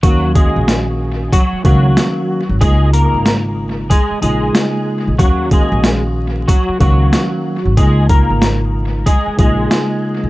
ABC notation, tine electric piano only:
X:1
M:4/4
L:1/8
Q:"Swing 16ths" 1/4=93
K:Ebm
V:1 name="Tine electric piano"
[E,B,DGf]4 z [E,B,DGf]2 z | [D,A,B,EF]4 z [D,A,B,EF]3 | [E,B,DGf]4 z [E,B,DGf]2 z | [D,A,B,EF]4 z [D,A,B,EF]3 |]